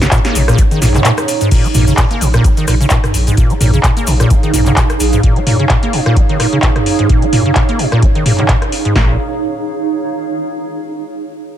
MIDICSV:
0, 0, Header, 1, 6, 480
1, 0, Start_track
1, 0, Key_signature, -5, "minor"
1, 0, Tempo, 465116
1, 1561, Time_signature, 4, 2, 24, 8
1, 11949, End_track
2, 0, Start_track
2, 0, Title_t, "Ambient pad"
2, 0, Program_c, 0, 92
2, 0, Note_on_c, 0, 63, 78
2, 0, Note_on_c, 0, 68, 81
2, 0, Note_on_c, 0, 73, 80
2, 0, Note_on_c, 0, 77, 87
2, 1550, Note_off_c, 0, 63, 0
2, 1561, Note_off_c, 0, 68, 0
2, 1562, Note_off_c, 0, 77, 0
2, 1563, Note_off_c, 0, 73, 0
2, 1563, Note_on_c, 0, 63, 80
2, 1945, Note_on_c, 0, 68, 76
2, 2499, Note_on_c, 0, 73, 95
2, 2746, Note_on_c, 0, 77, 93
2, 9230, Note_off_c, 0, 63, 0
2, 9242, Note_off_c, 0, 73, 0
2, 9242, Note_off_c, 0, 77, 0
2, 9242, Note_on_c, 0, 63, 77
2, 9243, Note_off_c, 0, 68, 0
2, 9322, Note_on_c, 0, 68, 78
2, 9396, Note_on_c, 0, 73, 77
2, 9460, Note_on_c, 0, 77, 79
2, 11121, Note_off_c, 0, 63, 0
2, 11121, Note_off_c, 0, 68, 0
2, 11121, Note_off_c, 0, 73, 0
2, 11121, Note_off_c, 0, 77, 0
2, 11949, End_track
3, 0, Start_track
3, 0, Title_t, "Analog synth pad"
3, 0, Program_c, 1, 89
3, 0, Note_on_c, 1, 56, 90
3, 0, Note_on_c, 1, 61, 84
3, 0, Note_on_c, 1, 65, 81
3, 0, Note_on_c, 1, 73, 98
3, 1520, Note_off_c, 1, 56, 0
3, 1520, Note_off_c, 1, 61, 0
3, 1521, Note_off_c, 1, 65, 0
3, 1550, Note_off_c, 1, 73, 0
3, 11949, End_track
4, 0, Start_track
4, 0, Title_t, "Acid bass"
4, 0, Program_c, 2, 38
4, 17, Note_on_c, 2, 49, 79
4, 75, Note_off_c, 2, 49, 0
4, 124, Note_on_c, 2, 46, 101
4, 196, Note_off_c, 2, 46, 0
4, 256, Note_on_c, 2, 58, 82
4, 365, Note_on_c, 2, 46, 81
4, 380, Note_off_c, 2, 58, 0
4, 436, Note_off_c, 2, 46, 0
4, 497, Note_on_c, 2, 46, 102
4, 604, Note_on_c, 2, 58, 86
4, 619, Note_off_c, 2, 46, 0
4, 647, Note_off_c, 2, 58, 0
4, 736, Note_on_c, 2, 51, 78
4, 824, Note_off_c, 2, 51, 0
4, 843, Note_on_c, 2, 46, 81
4, 916, Note_off_c, 2, 46, 0
4, 976, Note_on_c, 2, 49, 79
4, 1034, Note_off_c, 2, 49, 0
4, 1083, Note_on_c, 2, 46, 107
4, 1155, Note_off_c, 2, 46, 0
4, 1456, Note_on_c, 2, 44, 77
4, 1544, Note_off_c, 2, 44, 0
4, 1564, Note_on_c, 2, 46, 81
4, 1696, Note_on_c, 2, 58, 74
4, 1712, Note_off_c, 2, 46, 0
4, 1731, Note_off_c, 2, 58, 0
4, 1804, Note_on_c, 2, 46, 77
4, 1913, Note_off_c, 2, 46, 0
4, 1936, Note_on_c, 2, 49, 77
4, 1994, Note_off_c, 2, 49, 0
4, 2042, Note_on_c, 2, 46, 101
4, 2115, Note_off_c, 2, 46, 0
4, 2174, Note_on_c, 2, 58, 80
4, 2283, Note_on_c, 2, 46, 78
4, 2298, Note_off_c, 2, 58, 0
4, 2355, Note_off_c, 2, 46, 0
4, 2415, Note_on_c, 2, 46, 102
4, 2523, Note_on_c, 2, 58, 83
4, 2538, Note_off_c, 2, 46, 0
4, 2566, Note_off_c, 2, 58, 0
4, 2656, Note_on_c, 2, 51, 76
4, 2744, Note_off_c, 2, 51, 0
4, 2764, Note_on_c, 2, 46, 81
4, 2836, Note_off_c, 2, 46, 0
4, 2896, Note_on_c, 2, 49, 73
4, 2954, Note_off_c, 2, 49, 0
4, 3004, Note_on_c, 2, 46, 103
4, 3076, Note_off_c, 2, 46, 0
4, 3376, Note_on_c, 2, 44, 75
4, 3464, Note_off_c, 2, 44, 0
4, 3484, Note_on_c, 2, 46, 79
4, 3616, Note_on_c, 2, 58, 79
4, 3631, Note_off_c, 2, 46, 0
4, 3650, Note_off_c, 2, 58, 0
4, 3724, Note_on_c, 2, 46, 76
4, 3832, Note_off_c, 2, 46, 0
4, 3856, Note_on_c, 2, 49, 77
4, 3915, Note_off_c, 2, 49, 0
4, 3962, Note_on_c, 2, 46, 102
4, 4035, Note_off_c, 2, 46, 0
4, 4094, Note_on_c, 2, 58, 81
4, 4202, Note_on_c, 2, 46, 80
4, 4217, Note_off_c, 2, 58, 0
4, 4275, Note_off_c, 2, 46, 0
4, 4335, Note_on_c, 2, 46, 99
4, 4442, Note_on_c, 2, 58, 85
4, 4458, Note_off_c, 2, 46, 0
4, 4486, Note_off_c, 2, 58, 0
4, 4574, Note_on_c, 2, 51, 77
4, 4663, Note_off_c, 2, 51, 0
4, 4682, Note_on_c, 2, 46, 78
4, 4755, Note_off_c, 2, 46, 0
4, 4814, Note_on_c, 2, 49, 78
4, 4874, Note_off_c, 2, 49, 0
4, 4923, Note_on_c, 2, 46, 104
4, 4995, Note_off_c, 2, 46, 0
4, 5295, Note_on_c, 2, 44, 73
4, 5383, Note_off_c, 2, 44, 0
4, 5404, Note_on_c, 2, 46, 79
4, 5535, Note_on_c, 2, 58, 73
4, 5550, Note_off_c, 2, 46, 0
4, 5570, Note_off_c, 2, 58, 0
4, 5642, Note_on_c, 2, 46, 74
4, 5751, Note_off_c, 2, 46, 0
4, 5774, Note_on_c, 2, 49, 78
4, 5833, Note_off_c, 2, 49, 0
4, 5882, Note_on_c, 2, 46, 104
4, 5955, Note_off_c, 2, 46, 0
4, 6015, Note_on_c, 2, 58, 78
4, 6123, Note_on_c, 2, 46, 82
4, 6139, Note_off_c, 2, 58, 0
4, 6196, Note_off_c, 2, 46, 0
4, 6255, Note_on_c, 2, 46, 103
4, 6363, Note_on_c, 2, 58, 83
4, 6378, Note_off_c, 2, 46, 0
4, 6406, Note_off_c, 2, 58, 0
4, 6494, Note_on_c, 2, 51, 75
4, 6583, Note_off_c, 2, 51, 0
4, 6602, Note_on_c, 2, 46, 77
4, 6675, Note_off_c, 2, 46, 0
4, 6735, Note_on_c, 2, 49, 76
4, 6794, Note_off_c, 2, 49, 0
4, 6841, Note_on_c, 2, 46, 104
4, 6914, Note_off_c, 2, 46, 0
4, 7214, Note_on_c, 2, 44, 77
4, 7303, Note_off_c, 2, 44, 0
4, 7454, Note_on_c, 2, 58, 76
4, 7490, Note_off_c, 2, 58, 0
4, 7563, Note_on_c, 2, 46, 80
4, 7672, Note_off_c, 2, 46, 0
4, 7695, Note_on_c, 2, 49, 76
4, 7754, Note_off_c, 2, 49, 0
4, 7802, Note_on_c, 2, 46, 103
4, 7875, Note_off_c, 2, 46, 0
4, 7936, Note_on_c, 2, 58, 78
4, 8043, Note_on_c, 2, 46, 77
4, 8058, Note_off_c, 2, 58, 0
4, 8115, Note_off_c, 2, 46, 0
4, 8175, Note_on_c, 2, 46, 100
4, 8284, Note_on_c, 2, 58, 82
4, 8299, Note_off_c, 2, 46, 0
4, 8327, Note_off_c, 2, 58, 0
4, 8415, Note_on_c, 2, 51, 75
4, 8503, Note_off_c, 2, 51, 0
4, 8522, Note_on_c, 2, 46, 79
4, 8595, Note_off_c, 2, 46, 0
4, 8654, Note_on_c, 2, 49, 76
4, 8713, Note_off_c, 2, 49, 0
4, 8763, Note_on_c, 2, 46, 106
4, 8835, Note_off_c, 2, 46, 0
4, 9135, Note_on_c, 2, 44, 75
4, 9223, Note_off_c, 2, 44, 0
4, 11949, End_track
5, 0, Start_track
5, 0, Title_t, "Analog synth bass"
5, 0, Program_c, 3, 38
5, 363, Note_on_c, 3, 34, 96
5, 535, Note_off_c, 3, 34, 0
5, 844, Note_on_c, 3, 34, 83
5, 1015, Note_off_c, 3, 34, 0
5, 1803, Note_on_c, 3, 34, 99
5, 1975, Note_off_c, 3, 34, 0
5, 2282, Note_on_c, 3, 34, 89
5, 2455, Note_off_c, 3, 34, 0
5, 2762, Note_on_c, 3, 34, 82
5, 2935, Note_off_c, 3, 34, 0
5, 3243, Note_on_c, 3, 34, 82
5, 3415, Note_off_c, 3, 34, 0
5, 3723, Note_on_c, 3, 34, 97
5, 3895, Note_off_c, 3, 34, 0
5, 4202, Note_on_c, 3, 34, 90
5, 4375, Note_off_c, 3, 34, 0
5, 4683, Note_on_c, 3, 34, 81
5, 4855, Note_off_c, 3, 34, 0
5, 5162, Note_on_c, 3, 34, 82
5, 5335, Note_off_c, 3, 34, 0
5, 9242, Note_on_c, 3, 34, 97
5, 9465, Note_off_c, 3, 34, 0
5, 11949, End_track
6, 0, Start_track
6, 0, Title_t, "Drums"
6, 16, Note_on_c, 9, 38, 64
6, 16, Note_on_c, 9, 42, 40
6, 22, Note_on_c, 9, 69, 38
6, 118, Note_on_c, 9, 39, 122
6, 119, Note_off_c, 9, 38, 0
6, 119, Note_off_c, 9, 42, 0
6, 122, Note_on_c, 9, 36, 117
6, 122, Note_on_c, 9, 42, 83
6, 125, Note_off_c, 9, 69, 0
6, 126, Note_on_c, 9, 69, 55
6, 221, Note_off_c, 9, 39, 0
6, 225, Note_off_c, 9, 36, 0
6, 226, Note_off_c, 9, 42, 0
6, 229, Note_off_c, 9, 69, 0
6, 254, Note_on_c, 9, 69, 23
6, 255, Note_on_c, 9, 38, 65
6, 255, Note_on_c, 9, 42, 60
6, 358, Note_off_c, 9, 69, 0
6, 359, Note_off_c, 9, 38, 0
6, 359, Note_off_c, 9, 42, 0
6, 363, Note_on_c, 9, 46, 99
6, 365, Note_on_c, 9, 69, 103
6, 466, Note_off_c, 9, 46, 0
6, 468, Note_off_c, 9, 69, 0
6, 496, Note_on_c, 9, 37, 70
6, 496, Note_on_c, 9, 42, 39
6, 503, Note_on_c, 9, 69, 43
6, 598, Note_off_c, 9, 69, 0
6, 598, Note_on_c, 9, 69, 55
6, 599, Note_off_c, 9, 37, 0
6, 599, Note_off_c, 9, 42, 0
6, 602, Note_on_c, 9, 36, 116
6, 603, Note_on_c, 9, 42, 85
6, 702, Note_off_c, 9, 69, 0
6, 706, Note_off_c, 9, 36, 0
6, 706, Note_off_c, 9, 42, 0
6, 736, Note_on_c, 9, 42, 41
6, 737, Note_on_c, 9, 69, 27
6, 839, Note_off_c, 9, 42, 0
6, 841, Note_off_c, 9, 69, 0
6, 844, Note_on_c, 9, 38, 36
6, 844, Note_on_c, 9, 45, 92
6, 844, Note_on_c, 9, 46, 102
6, 847, Note_on_c, 9, 69, 85
6, 947, Note_off_c, 9, 38, 0
6, 947, Note_off_c, 9, 45, 0
6, 947, Note_off_c, 9, 46, 0
6, 950, Note_off_c, 9, 69, 0
6, 971, Note_on_c, 9, 39, 39
6, 976, Note_on_c, 9, 42, 40
6, 976, Note_on_c, 9, 45, 82
6, 986, Note_on_c, 9, 69, 36
6, 1075, Note_off_c, 9, 39, 0
6, 1079, Note_off_c, 9, 42, 0
6, 1079, Note_off_c, 9, 45, 0
6, 1079, Note_on_c, 9, 39, 123
6, 1083, Note_on_c, 9, 42, 88
6, 1087, Note_off_c, 9, 69, 0
6, 1087, Note_on_c, 9, 69, 50
6, 1182, Note_off_c, 9, 39, 0
6, 1186, Note_off_c, 9, 42, 0
6, 1190, Note_off_c, 9, 69, 0
6, 1214, Note_on_c, 9, 69, 26
6, 1215, Note_on_c, 9, 37, 69
6, 1215, Note_on_c, 9, 42, 40
6, 1318, Note_off_c, 9, 37, 0
6, 1318, Note_off_c, 9, 42, 0
6, 1318, Note_off_c, 9, 69, 0
6, 1322, Note_on_c, 9, 46, 103
6, 1326, Note_on_c, 9, 69, 88
6, 1425, Note_off_c, 9, 46, 0
6, 1429, Note_off_c, 9, 69, 0
6, 1455, Note_on_c, 9, 42, 59
6, 1455, Note_on_c, 9, 69, 41
6, 1558, Note_off_c, 9, 42, 0
6, 1558, Note_off_c, 9, 69, 0
6, 1562, Note_on_c, 9, 42, 80
6, 1562, Note_on_c, 9, 49, 96
6, 1563, Note_on_c, 9, 36, 110
6, 1565, Note_on_c, 9, 69, 51
6, 1665, Note_off_c, 9, 42, 0
6, 1665, Note_off_c, 9, 49, 0
6, 1666, Note_off_c, 9, 36, 0
6, 1669, Note_off_c, 9, 69, 0
6, 1695, Note_on_c, 9, 42, 36
6, 1704, Note_on_c, 9, 69, 25
6, 1798, Note_off_c, 9, 42, 0
6, 1799, Note_off_c, 9, 69, 0
6, 1799, Note_on_c, 9, 69, 89
6, 1802, Note_on_c, 9, 45, 89
6, 1802, Note_on_c, 9, 46, 107
6, 1902, Note_off_c, 9, 69, 0
6, 1905, Note_off_c, 9, 45, 0
6, 1905, Note_off_c, 9, 46, 0
6, 1935, Note_on_c, 9, 42, 38
6, 1935, Note_on_c, 9, 69, 41
6, 2038, Note_off_c, 9, 42, 0
6, 2038, Note_off_c, 9, 69, 0
6, 2038, Note_on_c, 9, 39, 116
6, 2041, Note_on_c, 9, 69, 49
6, 2042, Note_on_c, 9, 36, 114
6, 2042, Note_on_c, 9, 42, 78
6, 2141, Note_off_c, 9, 39, 0
6, 2144, Note_off_c, 9, 69, 0
6, 2145, Note_off_c, 9, 42, 0
6, 2146, Note_off_c, 9, 36, 0
6, 2175, Note_on_c, 9, 42, 56
6, 2176, Note_on_c, 9, 69, 23
6, 2278, Note_off_c, 9, 42, 0
6, 2279, Note_off_c, 9, 69, 0
6, 2282, Note_on_c, 9, 46, 97
6, 2290, Note_on_c, 9, 69, 98
6, 2386, Note_off_c, 9, 46, 0
6, 2393, Note_off_c, 9, 69, 0
6, 2409, Note_on_c, 9, 69, 36
6, 2414, Note_on_c, 9, 37, 65
6, 2414, Note_on_c, 9, 42, 38
6, 2512, Note_off_c, 9, 69, 0
6, 2517, Note_off_c, 9, 37, 0
6, 2517, Note_off_c, 9, 42, 0
6, 2522, Note_on_c, 9, 36, 113
6, 2522, Note_on_c, 9, 42, 83
6, 2529, Note_on_c, 9, 69, 53
6, 2625, Note_off_c, 9, 36, 0
6, 2625, Note_off_c, 9, 42, 0
6, 2632, Note_off_c, 9, 69, 0
6, 2655, Note_on_c, 9, 42, 38
6, 2655, Note_on_c, 9, 69, 27
6, 2758, Note_off_c, 9, 42, 0
6, 2758, Note_off_c, 9, 69, 0
6, 2760, Note_on_c, 9, 69, 90
6, 2762, Note_on_c, 9, 37, 58
6, 2762, Note_on_c, 9, 46, 101
6, 2863, Note_off_c, 9, 69, 0
6, 2865, Note_off_c, 9, 37, 0
6, 2865, Note_off_c, 9, 46, 0
6, 2895, Note_on_c, 9, 42, 39
6, 2905, Note_on_c, 9, 69, 40
6, 2993, Note_off_c, 9, 69, 0
6, 2993, Note_on_c, 9, 69, 50
6, 2997, Note_on_c, 9, 39, 122
6, 2998, Note_off_c, 9, 42, 0
6, 3002, Note_on_c, 9, 36, 118
6, 3002, Note_on_c, 9, 42, 81
6, 3096, Note_off_c, 9, 69, 0
6, 3100, Note_off_c, 9, 39, 0
6, 3105, Note_off_c, 9, 36, 0
6, 3105, Note_off_c, 9, 42, 0
6, 3134, Note_on_c, 9, 37, 60
6, 3134, Note_on_c, 9, 42, 37
6, 3134, Note_on_c, 9, 45, 80
6, 3145, Note_on_c, 9, 69, 27
6, 3238, Note_off_c, 9, 37, 0
6, 3238, Note_off_c, 9, 42, 0
6, 3238, Note_off_c, 9, 45, 0
6, 3240, Note_on_c, 9, 46, 101
6, 3243, Note_off_c, 9, 69, 0
6, 3243, Note_on_c, 9, 69, 85
6, 3344, Note_off_c, 9, 46, 0
6, 3346, Note_off_c, 9, 69, 0
6, 3375, Note_on_c, 9, 42, 57
6, 3381, Note_on_c, 9, 69, 42
6, 3478, Note_off_c, 9, 42, 0
6, 3481, Note_on_c, 9, 42, 76
6, 3482, Note_on_c, 9, 36, 113
6, 3484, Note_off_c, 9, 69, 0
6, 3486, Note_on_c, 9, 69, 51
6, 3584, Note_off_c, 9, 42, 0
6, 3585, Note_off_c, 9, 36, 0
6, 3589, Note_off_c, 9, 69, 0
6, 3613, Note_on_c, 9, 69, 28
6, 3614, Note_on_c, 9, 42, 36
6, 3716, Note_off_c, 9, 69, 0
6, 3717, Note_off_c, 9, 42, 0
6, 3721, Note_on_c, 9, 45, 90
6, 3721, Note_on_c, 9, 46, 110
6, 3726, Note_on_c, 9, 69, 93
6, 3824, Note_off_c, 9, 45, 0
6, 3824, Note_off_c, 9, 46, 0
6, 3829, Note_off_c, 9, 69, 0
6, 3855, Note_on_c, 9, 42, 37
6, 3855, Note_on_c, 9, 69, 38
6, 3957, Note_on_c, 9, 39, 118
6, 3958, Note_off_c, 9, 42, 0
6, 3958, Note_off_c, 9, 69, 0
6, 3962, Note_on_c, 9, 36, 122
6, 3962, Note_on_c, 9, 42, 76
6, 3966, Note_on_c, 9, 69, 56
6, 4061, Note_off_c, 9, 39, 0
6, 4065, Note_off_c, 9, 36, 0
6, 4065, Note_off_c, 9, 42, 0
6, 4069, Note_off_c, 9, 69, 0
6, 4094, Note_on_c, 9, 42, 54
6, 4098, Note_on_c, 9, 69, 27
6, 4197, Note_off_c, 9, 42, 0
6, 4199, Note_off_c, 9, 69, 0
6, 4199, Note_on_c, 9, 69, 101
6, 4201, Note_on_c, 9, 46, 100
6, 4303, Note_off_c, 9, 69, 0
6, 4304, Note_off_c, 9, 46, 0
6, 4334, Note_on_c, 9, 37, 61
6, 4334, Note_on_c, 9, 42, 36
6, 4337, Note_on_c, 9, 69, 45
6, 4437, Note_off_c, 9, 37, 0
6, 4437, Note_off_c, 9, 42, 0
6, 4440, Note_off_c, 9, 69, 0
6, 4441, Note_on_c, 9, 42, 80
6, 4442, Note_on_c, 9, 36, 123
6, 4443, Note_on_c, 9, 69, 57
6, 4544, Note_off_c, 9, 42, 0
6, 4545, Note_off_c, 9, 36, 0
6, 4546, Note_off_c, 9, 69, 0
6, 4574, Note_on_c, 9, 42, 37
6, 4576, Note_on_c, 9, 69, 27
6, 4677, Note_off_c, 9, 42, 0
6, 4679, Note_off_c, 9, 69, 0
6, 4681, Note_on_c, 9, 45, 88
6, 4681, Note_on_c, 9, 46, 110
6, 4685, Note_on_c, 9, 69, 94
6, 4784, Note_off_c, 9, 45, 0
6, 4784, Note_off_c, 9, 46, 0
6, 4789, Note_off_c, 9, 69, 0
6, 4810, Note_on_c, 9, 39, 37
6, 4810, Note_on_c, 9, 69, 45
6, 4815, Note_on_c, 9, 42, 38
6, 4815, Note_on_c, 9, 45, 84
6, 4913, Note_off_c, 9, 39, 0
6, 4913, Note_off_c, 9, 69, 0
6, 4917, Note_on_c, 9, 39, 127
6, 4918, Note_off_c, 9, 42, 0
6, 4918, Note_off_c, 9, 45, 0
6, 4921, Note_on_c, 9, 36, 116
6, 4922, Note_on_c, 9, 42, 82
6, 4925, Note_on_c, 9, 69, 55
6, 5021, Note_off_c, 9, 39, 0
6, 5025, Note_off_c, 9, 36, 0
6, 5025, Note_off_c, 9, 42, 0
6, 5029, Note_off_c, 9, 69, 0
6, 5054, Note_on_c, 9, 69, 26
6, 5055, Note_on_c, 9, 37, 59
6, 5055, Note_on_c, 9, 42, 38
6, 5157, Note_off_c, 9, 69, 0
6, 5158, Note_off_c, 9, 37, 0
6, 5158, Note_off_c, 9, 42, 0
6, 5161, Note_on_c, 9, 46, 106
6, 5161, Note_on_c, 9, 69, 97
6, 5264, Note_off_c, 9, 69, 0
6, 5265, Note_off_c, 9, 46, 0
6, 5289, Note_on_c, 9, 69, 37
6, 5294, Note_on_c, 9, 42, 53
6, 5392, Note_off_c, 9, 69, 0
6, 5397, Note_off_c, 9, 42, 0
6, 5401, Note_on_c, 9, 36, 117
6, 5401, Note_on_c, 9, 42, 75
6, 5505, Note_off_c, 9, 36, 0
6, 5505, Note_off_c, 9, 42, 0
6, 5534, Note_on_c, 9, 42, 34
6, 5638, Note_off_c, 9, 42, 0
6, 5642, Note_on_c, 9, 45, 97
6, 5642, Note_on_c, 9, 46, 115
6, 5745, Note_off_c, 9, 45, 0
6, 5745, Note_off_c, 9, 46, 0
6, 5775, Note_on_c, 9, 42, 36
6, 5877, Note_on_c, 9, 39, 116
6, 5878, Note_off_c, 9, 42, 0
6, 5881, Note_on_c, 9, 36, 121
6, 5882, Note_on_c, 9, 42, 77
6, 5981, Note_off_c, 9, 39, 0
6, 5985, Note_off_c, 9, 36, 0
6, 5985, Note_off_c, 9, 42, 0
6, 6014, Note_on_c, 9, 42, 52
6, 6117, Note_off_c, 9, 42, 0
6, 6122, Note_on_c, 9, 46, 104
6, 6225, Note_off_c, 9, 46, 0
6, 6255, Note_on_c, 9, 37, 62
6, 6358, Note_off_c, 9, 37, 0
6, 6362, Note_on_c, 9, 36, 121
6, 6362, Note_on_c, 9, 42, 77
6, 6465, Note_off_c, 9, 36, 0
6, 6466, Note_off_c, 9, 42, 0
6, 6495, Note_on_c, 9, 42, 34
6, 6599, Note_off_c, 9, 42, 0
6, 6602, Note_on_c, 9, 37, 57
6, 6602, Note_on_c, 9, 46, 108
6, 6705, Note_off_c, 9, 37, 0
6, 6705, Note_off_c, 9, 46, 0
6, 6838, Note_on_c, 9, 39, 124
6, 6842, Note_on_c, 9, 36, 126
6, 6843, Note_on_c, 9, 42, 76
6, 6941, Note_off_c, 9, 39, 0
6, 6945, Note_off_c, 9, 36, 0
6, 6946, Note_off_c, 9, 42, 0
6, 6975, Note_on_c, 9, 37, 58
6, 6975, Note_on_c, 9, 42, 34
6, 6975, Note_on_c, 9, 45, 88
6, 7078, Note_off_c, 9, 37, 0
6, 7078, Note_off_c, 9, 42, 0
6, 7078, Note_off_c, 9, 45, 0
6, 7081, Note_on_c, 9, 46, 105
6, 7185, Note_off_c, 9, 46, 0
6, 7214, Note_on_c, 9, 42, 54
6, 7317, Note_off_c, 9, 42, 0
6, 7322, Note_on_c, 9, 36, 121
6, 7322, Note_on_c, 9, 42, 70
6, 7425, Note_off_c, 9, 36, 0
6, 7425, Note_off_c, 9, 42, 0
6, 7455, Note_on_c, 9, 42, 34
6, 7558, Note_off_c, 9, 42, 0
6, 7562, Note_on_c, 9, 45, 96
6, 7562, Note_on_c, 9, 46, 112
6, 7665, Note_off_c, 9, 45, 0
6, 7665, Note_off_c, 9, 46, 0
6, 7694, Note_on_c, 9, 42, 34
6, 7797, Note_on_c, 9, 39, 114
6, 7798, Note_off_c, 9, 42, 0
6, 7801, Note_on_c, 9, 42, 73
6, 7802, Note_on_c, 9, 36, 121
6, 7900, Note_off_c, 9, 39, 0
6, 7904, Note_off_c, 9, 42, 0
6, 7905, Note_off_c, 9, 36, 0
6, 7934, Note_on_c, 9, 42, 49
6, 8037, Note_off_c, 9, 42, 0
6, 8041, Note_on_c, 9, 46, 101
6, 8145, Note_off_c, 9, 46, 0
6, 8174, Note_on_c, 9, 37, 61
6, 8277, Note_off_c, 9, 37, 0
6, 8282, Note_on_c, 9, 36, 119
6, 8282, Note_on_c, 9, 42, 76
6, 8385, Note_off_c, 9, 36, 0
6, 8385, Note_off_c, 9, 42, 0
6, 8414, Note_on_c, 9, 42, 35
6, 8517, Note_off_c, 9, 42, 0
6, 8522, Note_on_c, 9, 45, 94
6, 8522, Note_on_c, 9, 46, 108
6, 8625, Note_off_c, 9, 45, 0
6, 8625, Note_off_c, 9, 46, 0
6, 8650, Note_on_c, 9, 39, 36
6, 8655, Note_on_c, 9, 42, 36
6, 8655, Note_on_c, 9, 45, 88
6, 8754, Note_off_c, 9, 39, 0
6, 8758, Note_off_c, 9, 42, 0
6, 8758, Note_off_c, 9, 45, 0
6, 8758, Note_on_c, 9, 39, 121
6, 8762, Note_on_c, 9, 36, 119
6, 8763, Note_on_c, 9, 42, 79
6, 8861, Note_off_c, 9, 39, 0
6, 8865, Note_off_c, 9, 36, 0
6, 8866, Note_off_c, 9, 42, 0
6, 8896, Note_on_c, 9, 37, 60
6, 8896, Note_on_c, 9, 42, 35
6, 8999, Note_off_c, 9, 37, 0
6, 8999, Note_off_c, 9, 42, 0
6, 9003, Note_on_c, 9, 46, 102
6, 9106, Note_off_c, 9, 46, 0
6, 9136, Note_on_c, 9, 42, 52
6, 9239, Note_off_c, 9, 42, 0
6, 9242, Note_on_c, 9, 36, 99
6, 9242, Note_on_c, 9, 38, 99
6, 9345, Note_off_c, 9, 36, 0
6, 9345, Note_off_c, 9, 38, 0
6, 11949, End_track
0, 0, End_of_file